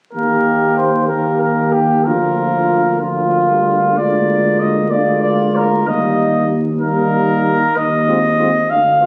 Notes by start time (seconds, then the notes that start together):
0.13 D#2 D#3 A#3 G4 A#4
0.77 C5
1.08 D#3 A#3 G4 A#4
1.41 A#4
1.72 G4
2.05 D2 F3 A#3 F4 A#4
3.00 F3 A#3 F4
3.48 G3
3.96 G#3 A#3 F4 D5
4.60 D#5
4.90 G#3 A#3 F4 D5
5.22 D5
5.56 A#4
5.87 D#2 G3 A#3 D#4 D#5
6.80 G3 A#3 D#4 A#4
7.76 D#2 D#5
8.08 G#3 C4 F4
8.39 G#3 C4 F4
8.70 D2 F5
9.00 G#3 B3 F4